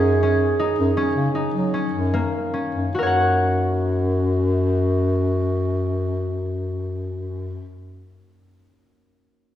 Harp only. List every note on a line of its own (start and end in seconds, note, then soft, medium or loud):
0.00 0.22 C#4 medium
0.00 0.59 D#4 medium
0.00 1.58 F#4 medium
0.00 0.92 A#4 medium
0.23 0.97 C#4 medium
0.59 1.34 D#4 medium
0.97 1.73 C#4 medium
1.35 4.05 D#4 soft
1.74 2.53 C#4 medium
2.14 5.35 A#3 medium
2.54 5.43 C#4 soft
2.95 7.72 F#4 soft
2.99 7.76 A#4 soft
3.03 7.80 C#5 soft
3.07 7.84 F#5 soft